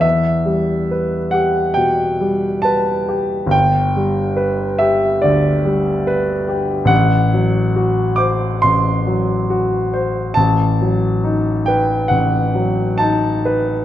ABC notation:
X:1
M:4/4
L:1/8
Q:1/4=69
K:Em
V:1 name="Grand piano"
e3 f g2 a2 | g3 e d2 z2 | f3 d' c'4 | a3 g f2 a2 |]
V:2 name="Grand piano"
E,, G, B G B,, G, B G | G,,, G, B G D,, G, B G | A,,, F, F c A,,, F, F c | A,,, F, ^D B A,,, F, D B |]